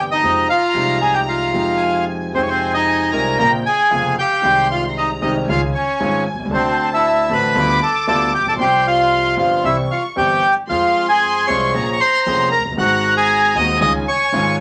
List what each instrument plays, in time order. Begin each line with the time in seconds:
Already playing: upright bass G1, grand piano G1 G2 C3 E3 E4, violin section G5
0.11 bandoneon D#4 D#5
0.16 violin section A5
0.22 upright bass F2, grand piano F2 C3 F3 G#3 D#4, violin section A#5
0.50 bandoneon F4 F5
0.74 upright bass C2, grand piano C2 C3 F3 G#3 D#4
1.01 bandoneon G#4 G#5
1.14 bandoneon G4 G5
1.28 bandoneon F4 F5
1.52 upright bass F2, grand piano F2 C3 F3 G#3
1.57 grand piano D#4
1.81 violin section G#5
2.32 grand piano F2 C3 F3 G#3 D#4, upright bass F2, bandoneon C4 C5, violin section G#5
2.43 bandoneon C#5
2.48 bandoneon C4 C5
2.74 bandoneon D#4 D#5
3.11 grand piano C2 C3 F3 G#3 D#4, upright bass C2, bandoneon A#4 A#5
3.39 grand piano A#1 A#2 C#3 A#3 C4 F4, upright bass A#1, bandoneon A#4 A#5, violin section G5
3.66 bandoneon G#4 G#5
3.91 grand piano F1 F2 C#3 A#3 C4 F4, upright bass F1, violin section F5
4.19 bandoneon G4 G5
4.42 grand piano C2 C3 D#3 G#3 C4 G4, upright bass C2, violin section C6
4.71 bandoneon F4 F5
4.97 bandoneon D#4 D#5, violin section A#5
5.21 grand piano C2 C3 D#3 G#3 C4 G4, upright bass C2, bandoneon D#4 D#5
5.48 upright bass C#2, grand piano C#2 C#3 D#3 G#3 C#4 F4, bandoneon F4 F5, violin section G#5
5.75 bandoneon C#4 C#5
6.00 grand piano G#1 G#2 D#3 G#3 C#4 F4, upright bass G#1
6.33 upright bass B1, grand piano B1
6.39 upright bass C2, grand piano C2
6.45 grand piano C#2, upright bass C#2
6.51 upright bass D2, grand piano D2 D3 A3 C4, bandoneon C4 C5, violin section A5
6.55 grand piano F#4
6.94 bandoneon E4 E5
7.29 upright bass A1, grand piano A1 A2 D3 A3 C4 F#4, bandoneon B5
7.34 bandoneon B4
7.55 upright bass D2, grand piano D2 D3 G3 B3 F4, violin section D6
7.82 bandoneon A4 A5
8.07 upright bass D2, grand piano D2 D3 G3 B3 F4, bandoneon A4 A5
8.34 bandoneon G4 G5
8.39 upright bass A1, grand piano A1
8.45 upright bass A#1, grand piano A#1, bandoneon A4 A5
8.52 upright bass B1, grand piano B1
8.57 upright bass C2, grand piano C2 C3 F3 G3 C4 G4, bandoneon G5, violin section C6
8.62 bandoneon G4
8.87 bandoneon F4 F5
9.37 upright bass G1, grand piano G1 G2 F3 G3 C4 G4, bandoneon F4 F5
9.56 violin section C6
9.64 upright bass C2, grand piano C2 C3 E3 G3 C4 G4, bandoneon E4 E5, violin section C#6
9.91 bandoneon F4 F5
10.16 grand piano G1 G2 E3 G3 C4 G4, upright bass G1, bandoneon G4 G5
10.67 grand piano F2 F3 G#3 C4, upright bass F2, string section C4 F4 G#4, bandoneon F4 F5, violin section C6
10.72 grand piano G#4
11.09 bandoneon G#4 G#5
11.47 grand piano C2 C3 F3 G#3 C4 G#4, upright bass C2, string section C4 F4 G#4, bandoneon C#5 C#6
11.74 grand piano A#1 A#2 F3 A#3 C#4 G#4, upright bass A#1, string section A#3 C#4 G#4, violin section A#5
11.93 bandoneon C#6
12.00 bandoneon C5 C6
12.26 upright bass F1, grand piano F1 F2 F3 A#3 C#4 G#4, string section A#3 C#4 G#4
12.51 bandoneon A#4 A#5
12.58 grand piano F1, upright bass F1
12.65 grand piano F#1, upright bass F#1
12.72 grand piano G1, upright bass G1
12.76 grand piano G#1 G#2 D#3 G#3 C4, upright bass G#1, string section G#3 C4 F#4, bandoneon F#4 F#5, violin section A#5
12.80 grand piano F#4
13.17 bandoneon G#4 G#5
13.55 grand piano D#1 D#2 D#3 G#3 C4 F#4, upright bass D#2, string section G#3 C4 F#4, bandoneon D#5 D#6
13.81 upright bass C#2, grand piano C#2 C#3 D#3 G#3 C#4 F4, string section C#4 D#4 F4, bandoneon D#5 D#6, violin section G#5
14.08 bandoneon C#5 C#6
14.32 upright bass G#1, grand piano G#1 G#2 D#3 G#3 C#4 F4, string section C#4 D#4 F4